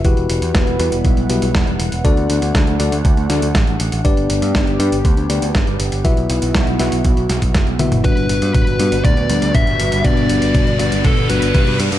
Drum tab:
HH |xxxxxxxxxxxxxxxx|xxxxxxxxxxxxxxxx|xxxxxxxxxxxxxxxx|xxxxxxxxxxxxxxxx|
SD |----o-------o---|----o-----o-o---|----o-------o---|----o-o---o-o---|
T1 |----------------|----------------|----------------|--------------o-|
T2 |----------------|----------------|----------------|---------------o|
BD |o---o---o---o---|o---o---o---o---|o---o---o---o---|o---o---o--oo---|

HH |xxxxxxxxxxxxxxxx|xxxxxxxxxxxxxxxx|
SD |----------------|----------------|
T1 |----------------|----------------|
T2 |o---o---o---o---|o---o---o---o---|
BD |o---o---o---o---|o---o---o---o---|